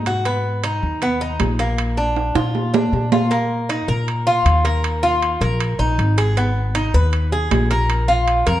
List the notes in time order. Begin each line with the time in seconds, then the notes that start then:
Already playing: G#2
0.06 F#4, high timbale
0.25 B3, high timbale
0.64 D#4, high timbale
0.83 D#2
1.02 B3, high timbale
1.21 D#4
1.40 A#1, high timbale, low timbale
1.59 A#3, high timbale
1.78 high timbale
1.97 D4
2.16 high timbale
2.35 A#2 F4, high timbale
2.55 low timbale
2.74 D4, low timbale
2.93 A#2, low timbale
3.12 F4, low timbale
3.31 A#3, high timbale
3.69 D#4, high timbale
3.88 A#2 A#4
4.08 high timbale
4.27 F4
4.45 D#2, high timbale
4.65 A#4, high timbale
4.84 high timbale
5.03 F4
5.22 high timbale
5.41 A#1 A#4, high timbale
5.60 high timbale
5.79 A#1 D#4
5.98 G#1, high timbale
6.18 G#4, high timbale
6.37 B3, high timbale
6.75 D#4, high timbale
6.94 D#2 B4
7.13 high timbale
7.32 G#4
7.51 A#1, high timbale, low timbale
7.71 A#4, high timbale
7.90 high timbale
8.08 F4
8.28 high timbale
8.47 F2 A#4, high timbale